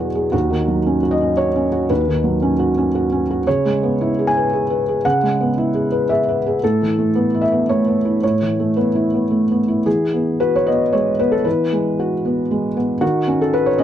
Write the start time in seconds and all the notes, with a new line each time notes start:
Already playing: E2 B2 F#3 B3 F#4 G#4 B4
0.15 G#4
0.32 D#2 F#4
0.50 D#3
0.68 F#3
0.86 C#4
1.03 F#4
1.11 D#5
1.21 C#4
1.37 F#4 C#5
1.56 C#4
1.72 F#4
1.90 D#2 B4
2.08 D#3
2.24 F#3
2.42 C#4
2.59 F#4
2.78 C#4
2.95 F#4
3.12 C#4
3.31 F#4
3.47 C#3 C#5
3.65 G#3
3.83 B3
4.01 E4
4.19 G#4
4.27 G#5
4.37 B4
4.53 G#4
4.70 B4
4.88 G#4
5.05 C#3 F#5
5.23 G#3
5.41 B3
5.58 E4
5.74 G#4
5.92 B4
6.09 G#4 E5
6.29 B4
6.46 G#4
6.64 A2 A4
6.82 E3
6.99 A3
7.15 B3
7.34 E4
7.41 E5
7.52 B3
7.69 A3 C#5
7.88 B3
8.05 E4
8.23 A2 C#5
8.42 E3
8.59 A3
8.77 B3 B4
8.95 E4
9.14 B3
9.31 A3
9.51 B3
9.68 E4
9.86 E3 G#4
10.14 B3
10.40 F#4 B4
10.56 C#5
10.67 B3 D#5
10.93 G#3 C#5
11.19 B3 B4
11.32 A4
11.44 E3 B4
11.73 G#3
11.99 F#4
12.25 B3
12.51 G#3
12.77 B3
13.01 D#3 F#4
13.27 C#4
13.42 A4
13.54 F#4 B4
13.66 C#5
13.78 C#4 D#5